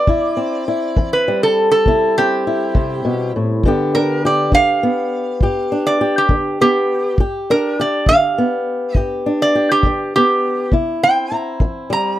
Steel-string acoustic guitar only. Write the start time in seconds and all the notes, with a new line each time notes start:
0.08 C3 E4
0.37 C4
0.68 E4
0.97 E3
1.28 G3
1.87 C3 E4
2.18 C4
2.47 E4
2.75 C3
3.05 B2
3.36 A2
3.65 G2 D3 B3 D4 G4
3.95 D4
4.25 G4
4.53 D3
4.83 B3
5.42 G2 G4
5.72 D4
6.01 G4
6.30 D3
6.61 B3
7.20 G2 G4
7.50 D4
7.80 G4
8.10 D3
8.38 B3
8.96 G2 G4
9.26 D4
9.55 G4
9.86 D3
10.17 B3
10.72 C3 E4
11.03 C4
11.32 E4
11.61 E3
11.90 G3